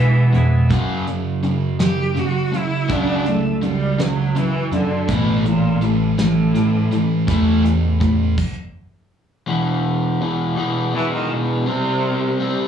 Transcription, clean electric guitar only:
0.00 0.35 E2 medium
0.00 0.35 B2 medium
0.00 0.36 E3 medium
0.00 0.35 G#3 medium
0.00 0.34 B3 medium
0.00 0.33 E4 medium
0.35 0.70 E3 medium
0.35 0.70 G#3 medium
0.35 0.69 B3 medium
0.35 0.69 E4 medium

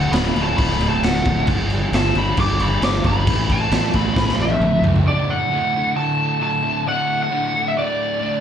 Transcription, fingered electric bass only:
0.12 0.32 D1 medium
0.35 0.55 D1 medium
0.58 0.77 D1 medium
0.80 0.99 D1 medium
1.03 1.22 D1 medium
1.26 1.45 D1 medium
1.48 1.86 G1 loud
1.92 2.12 G1 loud
2.16 2.35 G1 loud
2.37 2.56 G1 medium
2.61 2.80 G1 loud
2.82 3.01 G1 medium
3.04 3.24 G1 medium
3.27 3.65 A1 loud
3.72 3.91 A1 loud
3.94 4.13 A1 medium
4.16 4.35 A1 medium
4.39 4.58 A1 medium
4.60 4.80 A1 medium
4.82 5.02 C#2 medium

